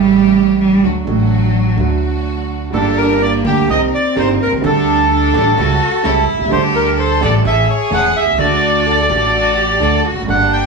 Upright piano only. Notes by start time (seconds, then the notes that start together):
Already playing: A1 A2 C#3 G3 A3 E4
0.84 D2 D3 F#3 A3 F#4
1.05 A1 A2 D3 F#3 A3
1.09 F#4
1.77 D2 D3 F#3 A3 F#4
2.71 G1 G2 D3 G3 A#3
2.75 G4
3.43 D2 D3 G3 A#3 G4
3.67 C2 C3 D#3 A#3 C4 G4
4.15 G1 G2 D#3 A#3 C4 G4
4.45 B1
4.51 C2
4.56 C#2
4.61 D2 D3 G3 A3 D4 A4
5.33 A1 A2 G3 A3 D4 A4
5.57 C#2 C#3 G3 C#4 E4 A4
6.03 C#2 C#3 G3 C#4 E4 A4
6.33 B1
6.39 C2
6.44 C#2 G3
6.49 D2 D3 A3 D4 A4
7.20 A1 A2 G3 A3 D4 A4
7.42 A1 A2 E3 A3 C#4 A4
7.90 E1 E2 E3 A3 C#4 A4
8.20 B1
8.26 C2
8.32 C#2
8.37 D2 D3 F#3 A3 D4
8.41 A4
9.08 A1 A2 F#3 A3 D4
9.12 A4
9.79 D2 D3 F#3 A3 D4 A4
10.10 E2
10.15 F2
10.21 F#2
10.26 G1 G2 G3 A#3 D4
10.30 A4